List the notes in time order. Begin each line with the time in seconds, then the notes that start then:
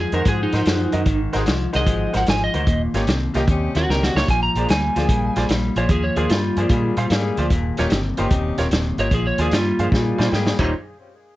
Already playing: G#2 F3
0.00 G#4
0.12 F2 G#2 D#3 G#3 C4 D#4 F#4 G#4 A#4 C5, closed hi-hat
0.25 G#2 F3 G#3 C4 F#4 G#4, kick, closed hi-hat
0.43 D#4
0.53 G#2 F3 D#4 F#4 A#4 C5, snare, closed hi-hat
0.66 F#2 G#2 F3 G#3 C4 F#4 G#4, snare, closed hi-hat
0.92 F#2 G#2 D#3 D#4 F#4 A#4 D#5, closed hi-hat
1.06 G#1 G#2 D#3, kick, closed hi-hat
1.33 G#1 G#2 D#3 G#3 C4 D#4 F#4 G#4 A#4 C5, snare, closed hi-hat
1.46 C2 G#2 F3, snare, closed hi-hat
1.73 C2 G#2 D#3 G#3 C4 D#4 F#4 G#4 A#4 C5 D#5, snare, closed hi-hat
1.86 G#1 G#2 F3, kick, closed hi-hat
2.13 G#1 G#2 F3 D#4 F#4 A#4 C5, snare, closed hi-hat
2.17 F#5
2.27 G#1 G#2 F3 G#5, snare, closed hi-hat
2.44 D#5
2.54 D2 G#2 D#3 D#4 F#4 A#4 C5, closed hi-hat
2.67 D#1 D#2 A#2, kick, closed hi-hat
2.94 G#1 D#2 A#2 G3 C#4 D#4 F4 G4 A#4 C#5, snare, closed hi-hat
3.07 C2 D#2 C3, snare, closed hi-hat
3.34 C2 D#2 A#2 G3 C#4 D#4 F4 G4 A#4 D#5, snare, closed hi-hat
3.47 D#2 C3 G3 C#4 D#4 G4, kick, closed hi-hat
3.75 D#2 C3 F4 F#4 G4 A#4 C#5, snare, closed hi-hat
3.89 C#2 D#2 C3 G3 C#4 D#4 G4 A#4, snare
4.03 F#4, snare
4.15 C#2 D#2 A#2 F4 G4 A#4 C#5, snare
4.28 A#1 A#2 F3 G#5, kick, snare, closed hi-hat
4.43 A#5
4.55 A#1 A#2 F3 G#3 A#3 D4 F4 G#4 C5 D5, closed hi-hat
4.69 D2 A#2 G3 G#5, snare, closed hi-hat
4.95 D2 A#2 F3 G#3 A#3 D4 F4 G#4 C5 D5, snare, closed hi-hat
5.09 A#1 A#2 G3, kick, closed hi-hat
5.36 A#1 A#2 G3 F4 G#4 C5 D5, snare, closed hi-hat
5.49 A#1 A#2 G3, snare, closed hi-hat
5.76 A#1 A#2 F3 F4 G#4 C5 C#5 D5, closed hi-hat
5.89 D#2 A#2 F3 G#4, kick, closed hi-hat
6.04 C#5
6.16 D#2 A#2 F3 G#3 A#3 D4 F4 G#4 C5 D5, closed hi-hat
6.30 G2 A#2 G3 F4, snare, closed hi-hat
6.57 G2 A#2 F3 G#3 A#3 D4 F4 G#4 C5 D5, closed hi-hat
6.69 A#2 G3 G#3 A#3 D4 G#4, kick, closed hi-hat
6.97 A#2 G3 F4 G#4 C5 F5, closed hi-hat
7.10 G#2 A#2 G3 G#3 A#3 D4 G#4, snare, closed hi-hat
7.37 D2 A#2 F3 F4 G#4 C5 D5, closed hi-hat
7.50 D#1 D#2 A#2, kick, closed hi-hat
7.77 D#1 D#2 A#2 G3 C#4 D#4 F4 G4 A#4 C#5, snare, closed hi-hat
7.90 G1 D#2 C3, snare, closed hi-hat
8.17 G1 D#2 A#2 G3 C#4 D#4 F4 G4 A#4 C5, closed hi-hat
8.31 D#1 D#2 C3, kick, closed hi-hat
8.58 D#1 D#2 C3 F4 G4 A#4 C#5, snare, closed hi-hat
8.71 D#1 D#2 C3, snare, closed hi-hat
8.98 G#1 D#2 A#2 F4 G4 A#4 C#5 D#5, closed hi-hat
9.11 A#1 A#2 F3 G#4, kick, closed hi-hat
9.27 C#5
9.38 D#2 A#2 F3 G#3 A#3 D4 F4 G#4 C5 D5, closed hi-hat
9.51 G2 A#2 G3 F4, snare, closed hi-hat
9.78 G2 A#2 F3 G#3 A#3 D4 F4 G#4 C5 F5, closed hi-hat
9.92 A#2 G3 G#3 A#3 D4 G#4, kick, snare
10.18 A#2 G3 F4 G#4 C5 D5 G#5, snare
10.32 G#2 A#2 G3 G#3 A#3 D4 G#4 G5, snare
10.47 snare
10.59 D#1 D#2 A#2 D#3 G3 A#3 C4 C#4 D#4 F4 G4 C5 C#5, kick, crash